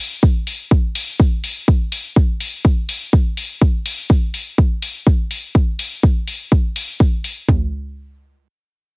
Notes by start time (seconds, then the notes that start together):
0.23 kick
0.47 open hi-hat
0.71 kick
0.95 open hi-hat
1.20 kick
1.44 open hi-hat
1.68 kick
1.92 open hi-hat
2.16 kick
2.40 open hi-hat
2.65 kick
2.89 open hi-hat
3.13 kick
3.37 open hi-hat
3.62 kick
3.86 open hi-hat
4.10 kick
4.34 open hi-hat
4.58 kick
4.82 open hi-hat
5.07 kick
5.31 open hi-hat
5.55 kick
5.79 open hi-hat
6.03 kick
6.28 open hi-hat
6.52 kick
6.76 open hi-hat
7.00 kick
7.24 open hi-hat
7.48 kick, floor tom